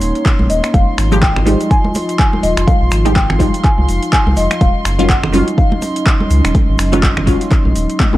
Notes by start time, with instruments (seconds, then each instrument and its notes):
Already playing: synth stab D#3 F3 F#3 C#4, analog synth pad A#3 C#4 D#4 C#5, marimba F#5, violin section C6
0.01 analog synth bass D#1, open hi-hat, shaker
0.15 closed hi-hat, shaker
0.25 kick, clap, closed hi-hat, shaker
0.39 analog synth bass A#1, high conga
0.50 analog synth bass D#1, marimba D#5, open hi-hat, shaker
0.63 finger snap, closed hi-hat, muted conga, shaker
0.74 analog synth bass F1, analog synth pad F3 F4 D#5, marimba F5, violin section C6, kick, closed hi-hat, high conga, shaker
0.98 analog synth bass G#1, finger snap, open hi-hat, shaker
1.12 synth stab F3 G#3 D#4 G4, closed hi-hat, high conga, shaker
1.22 marimba G5, kick, clap, closed hi-hat, shaker
1.36 finger snap, low conga
1.46 synth stab F3 G3 G#3 D#4, open hi-hat, high conga, shaker
1.60 closed hi-hat, shaker
1.71 marimba G#5, kick, closed hi-hat, shaker
1.84 muted conga, high conga
1.95 open hi-hat, muted conga, shaker
2.09 closed hi-hat, shaker
2.19 marimba G#5, kick, clap, closed hi-hat, shaker
2.33 high conga
2.43 analog synth bass D#1, marimba D#5, open hi-hat, shaker
2.57 analog synth bass F1, finger snap, closed hi-hat, shaker
2.67 marimba F5, analog synth pad F5, kick, closed hi-hat, high conga, shaker
2.81 analog synth bass A#1
2.91 analog synth bass G#1, finger snap, open hi-hat, shaker
3.05 synth stab F3 G#3 D#4 G4, closed hi-hat, muted conga, high conga, shaker
3.16 marimba G5, kick, clap, closed hi-hat, shaker
3.30 finger snap, low conga
3.39 synth stab F3 G3 G#3 D#4, kick, open hi-hat, high conga, shaker
3.54 closed hi-hat, shaker
3.64 marimba G#5, kick, clap, closed hi-hat, muted conga, shaker
3.78 analog synth bass C2, high conga
3.89 analog synth bass F1, open hi-hat, shaker
4.03 closed hi-hat, shaker
4.12 marimba G#5, kick, clap, closed hi-hat, shaker
4.27 analog synth bass C2, high conga
4.37 analog synth bass F1, marimba D#5, open hi-hat, shaker
4.51 finger snap, closed hi-hat, muted conga, shaker
4.61 analog synth bass D#1, analog synth pad F#3 C#4 D#4 D#5, marimba F5, kick, closed hi-hat, high conga, shaker
4.85 analog synth bass F#1, finger snap, open hi-hat, shaker
4.99 synth stab D#3 F#3 C#4 F4, closed hi-hat, high conga, shaker
5.09 marimba F#5, kick, clap, closed hi-hat, shaker
5.24 finger snap, low conga
5.32 synth stab D#3 F#3 C#4 F4, open hi-hat, high conga, shaker
5.48 closed hi-hat, shaker
5.58 marimba F5, kick, closed hi-hat, shaker
5.72 muted conga, high conga
5.82 open hi-hat, muted conga, shaker
5.96 closed hi-hat, shaker
6.06 kick, clap, closed hi-hat, shaker
6.20 high conga
6.30 analog synth bass C#2, open hi-hat, shaker
6.44 analog synth bass D#1, finger snap, closed hi-hat, shaker
6.55 kick, closed hi-hat, high conga, shaker
6.69 analog synth bass G#1
6.79 analog synth bass F#1, finger snap, open hi-hat, shaker
6.92 synth stab D#3 F#3 C#4 F4, closed hi-hat, muted conga, high conga, shaker
7.03 kick, clap, closed hi-hat, shaker
7.17 finger snap, low conga
7.26 synth stab D#3 F#3 C#4 F4, kick, open hi-hat, high conga, shaker
7.41 closed hi-hat, shaker
7.51 kick, clap, closed hi-hat, muted conga, shaker
7.65 analog synth bass A#1, high conga
7.75 analog synth bass D#1, open hi-hat, shaker
7.89 closed hi-hat, shaker
8.00 kick, clap, closed hi-hat, high tom, shaker
8.13 analog synth bass A#1, high tom, high conga